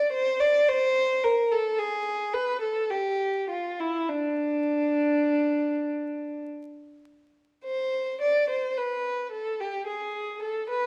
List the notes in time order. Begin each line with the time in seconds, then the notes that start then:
Already playing: D5
0.12 C5
0.40 D5
0.68 C5
1.24 A#4
1.52 A4
1.79 G#4
2.34 B4
2.61 A4
2.91 G4
3.50 F4
3.80 E4
4.09 D4
7.64 C5
8.21 D5
8.50 C5
8.78 B4
9.31 A4
9.60 G4
9.87 G#4
10.42 A4
10.70 B4